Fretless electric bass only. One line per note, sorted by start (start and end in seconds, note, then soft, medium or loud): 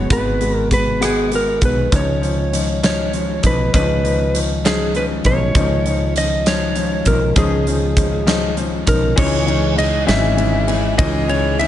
0.10 1.58 G#1 medium
1.62 1.90 B1 medium
1.92 3.40 C#2 medium
3.44 3.72 B1 medium
3.74 5.21 C#2 loud
5.25 5.54 B1 medium
5.55 7.02 C#2 medium
7.06 7.35 B1 medium
7.36 8.83 C#2 medium
8.88 9.16 B1 medium
9.18 10.04 C#2 loud
10.08 10.95 G#1 medium
10.99 11.68 C#2 loud